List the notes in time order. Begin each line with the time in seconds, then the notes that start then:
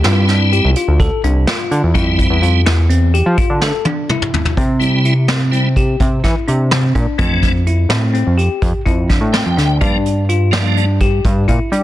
0.04 G2 G3 C4 E4 F4, snare, closed hi-hat
0.28 D4, snare, closed hi-hat
0.52 G4, closed hi-hat
0.64 C2
0.76 F4, closed hi-hat
0.88 D2
1.00 A4, kick, closed hi-hat
1.24 C2 D4, closed hi-hat
1.47 F4, snare, closed hi-hat
1.71 D3, closed hi-hat
1.83 E2
1.94 F2 G3 C4 E4, kick, closed hi-hat
2.19 kick, closed hi-hat
2.30 E2
2.42 F2 F4, closed hi-hat
2.66 E2 E4, snare, closed hi-hat
2.89 C4, closed hi-hat
3.14 G4, closed hi-hat
3.26 F3
3.37 F4, kick, closed hi-hat
3.50 D3
3.61 A4, snare
3.85 D4, high tom
4.09 E4, mid tom
4.22 mid tom
4.34 floor tom
4.45 floor tom
4.57 C3 C4, kick, closed hi-hat
4.80 G3 C4 E4, closed hi-hat
5.05 E4, closed hi-hat
5.28 C4, snare, closed hi-hat
5.51 G3 C4 E4, closed hi-hat
5.76 G4, kick, closed hi-hat
6.00 C3, kick, closed hi-hat
6.24 E3 E4, kick, snare, closed hi-hat
6.48 C3 D4, closed hi-hat
6.71 C4, snare, closed hi-hat
6.95 A#2 D4, kick, closed hi-hat
7.18 F2 E3 A3 C4 D4, kick, closed hi-hat
7.43 kick, snare, closed hi-hat
7.67 E4, closed hi-hat
7.89 A2 C4, snare, closed hi-hat
8.14 C4, closed hi-hat
8.27 F2
8.38 G4, closed hi-hat
8.62 F2, kick, closed hi-hat
8.86 F2 E4, kick, closed hi-hat
9.10 D4, kick, snare, closed hi-hat
9.21 A2
9.33 C4 G5, snare, closed hi-hat
9.46 F2
9.57 D2 D4, snare, closed hi-hat
9.81 G2 F3 A#3 D4, kick, closed hi-hat
10.05 closed hi-hat
10.29 F4, closed hi-hat
10.51 F3 A#3 D4, snare, closed hi-hat
10.77 D4, closed hi-hat
11.00 G4, kick, closed hi-hat
11.25 G2, kick, closed hi-hat
11.48 A#2 E4, kick, closed hi-hat
11.72 G3 D4, closed hi-hat